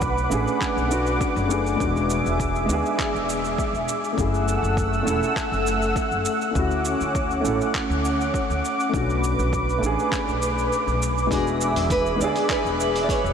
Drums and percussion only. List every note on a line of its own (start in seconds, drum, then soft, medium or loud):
0.01 kick loud
0.01 shaker soft
0.18 shaker soft
0.31 shaker medium
0.48 shaker soft
0.61 kick loud
0.61 clap medium
0.61 shaker soft
0.78 shaker soft
0.91 shaker medium
1.07 shaker soft
1.21 kick loud
1.21 shaker soft
1.37 shaker soft
1.51 shaker medium
1.67 shaker soft
1.80 kick medium
1.80 shaker soft
1.96 shaker soft
2.10 shaker medium
2.26 shaker soft
2.40 kick medium
2.40 shaker soft
2.55 shaker soft
2.69 shaker medium
2.86 shaker soft
2.99 kick loud
2.99 clap medium
2.99 shaker soft
3.16 shaker soft
3.29 shaker medium
3.45 shaker soft
3.58 kick medium
3.58 shaker soft
3.75 shaker soft
3.88 shaker medium
4.04 shaker soft
4.18 kick medium
4.18 shaker soft
4.34 shaker soft
4.48 shaker medium
4.64 shaker soft
4.77 kick loud
4.77 shaker soft
4.93 shaker soft
5.07 shaker medium
5.23 shaker soft
5.36 kick medium
5.36 clap medium
5.36 shaker soft
5.53 shaker soft
5.67 shaker medium
5.82 shaker soft
5.96 kick medium
5.96 shaker soft
6.11 shaker soft
6.25 shaker medium
6.41 shaker soft
6.55 kick medium
6.55 shaker soft
6.71 shaker soft
6.85 shaker medium
7.01 shaker soft
7.15 kick loud
7.15 shaker soft
7.31 shaker soft
7.45 shaker medium
7.61 shaker soft
7.75 kick medium
7.75 clap medium
7.75 shaker soft
7.91 shaker soft
8.05 shaker medium
8.21 shaker soft
8.34 kick loud
8.34 shaker soft
8.50 shaker soft
8.65 shaker medium
8.80 shaker soft
8.94 kick medium
8.94 shaker soft
9.10 shaker soft
9.24 shaker medium
9.39 shaker soft
9.53 kick medium
9.53 shaker soft
9.69 shaker soft
9.83 shaker medium
9.99 shaker soft
10.12 kick loud
10.12 clap medium
10.12 shaker soft
10.28 shaker soft
10.42 shaker medium
10.58 shaker soft
10.72 shaker soft
10.88 shaker soft
11.02 shaker medium
11.18 shaker soft
11.31 kick medium
11.31 open hi-hat soft
11.31 shaker soft
11.47 shaker soft
11.61 shaker medium
11.76 open hi-hat medium
11.76 shaker soft
11.90 kick loud
11.90 open hi-hat soft
11.90 shaker soft
12.06 shaker soft
12.21 shaker medium
12.36 open hi-hat medium
12.36 shaker soft
12.49 kick loud
12.49 clap medium
12.49 open hi-hat soft
12.49 shaker soft
12.66 shaker soft
12.80 shaker medium
12.96 open hi-hat medium
12.96 shaker soft
13.09 kick loud
13.09 open hi-hat soft
13.09 shaker soft
13.26 shaker soft